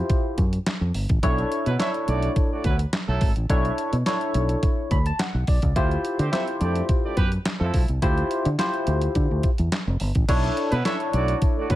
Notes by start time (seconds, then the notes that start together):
Already playing: E4 F4 G4 C5
0.10 kick, closed hi-hat
0.38 F#2, kick, closed hi-hat
0.53 closed hi-hat
0.66 snare, clap, closed hi-hat
0.81 F2
0.94 G1, open hi-hat
1.09 A1, kick, closed hi-hat
1.23 B1 D4 E4 A4 C#5, kick, closed hi-hat
1.38 closed hi-hat
1.52 closed hi-hat
1.66 B2 F#3 B3 E4 B4, closed hi-hat
1.79 C#4 D4 E4 A4 C#5 E5, snare, clap, closed hi-hat
1.94 closed hi-hat
2.08 B1 A3 D4 F#4 D5, closed hi-hat
2.23 closed hi-hat
2.36 kick, closed hi-hat
2.51 A3 D4 F#4 D5
2.64 D2 F#3 B3 E4 B4, kick, closed hi-hat
2.79 closed hi-hat
2.93 snare, clap, closed hi-hat
3.08 B1 F#3 A3 E4 A4
3.21 G#1, kick, open hi-hat
3.36 A1, closed hi-hat
3.49 B1 D4 E4 A4 C#5, kick, closed hi-hat
3.65 closed hi-hat
3.78 closed hi-hat
3.93 B2, closed hi-hat
4.06 D4 E4 A4 C#5, snare, clap, closed hi-hat
4.21 closed hi-hat
4.34 B1, closed hi-hat
4.49 closed hi-hat
4.63 kick, closed hi-hat
4.91 D2 B5, kick, closed hi-hat
5.06 A5, closed hi-hat
5.19 F#5, snare, clap, closed hi-hat
5.34 B1
5.47 B1 D5, kick, open hi-hat
5.62 C#2, kick, closed hi-hat
5.76 D2 E4 F4 G4 C5, kick, closed hi-hat
5.91 closed hi-hat
6.05 closed hi-hat
6.19 D3 A3 C4 G4 C5, closed hi-hat
6.32 C4 E4 F4 G4 A4 C5 E5, snare, clap, closed hi-hat
6.48 closed hi-hat
6.61 F2 A3 D4 G4 D5, closed hi-hat
6.76 closed hi-hat
6.89 kick, closed hi-hat
7.04 A3 D4 G4 D5
7.17 F#2 B3 G4 B4, kick, closed hi-hat
7.32 closed hi-hat
7.46 snare, clap, closed hi-hat
7.60 F2 F3 A3 E4 A4
7.74 B1, kick, open hi-hat
7.88 C2, closed hi-hat
8.02 D2 E4 F4 G4 C5, kick, closed hi-hat
8.18 closed hi-hat
8.31 closed hi-hat
8.45 D3, closed hi-hat
8.58 E4 F4 G4 C5, snare, clap, closed hi-hat
8.74 closed hi-hat
8.87 D2, closed hi-hat
9.02 closed hi-hat
9.15 D3, kick, closed hi-hat
9.31 D2
9.43 kick, closed hi-hat
9.58 E2, closed hi-hat
9.72 snare, clap, closed hi-hat
9.87 F1
10.00 G1, open hi-hat
10.15 A1, kick, closed hi-hat
10.28 B1 D4 E4 A4 C#5, kick, closed hi-hat, crash
10.44 closed hi-hat
10.57 closed hi-hat
10.72 B2 F#3 B3 E4 B4, closed hi-hat
10.85 C#4 D4 E4 A4 C#5 E5, snare, clap, closed hi-hat
11.00 closed hi-hat
11.13 B1 A3 D4 F#4 D5, closed hi-hat
11.28 closed hi-hat
11.42 kick, closed hi-hat
11.57 A3 D4 F#4 D5
11.70 D2 F#3 B3 E4 B4, kick, closed hi-hat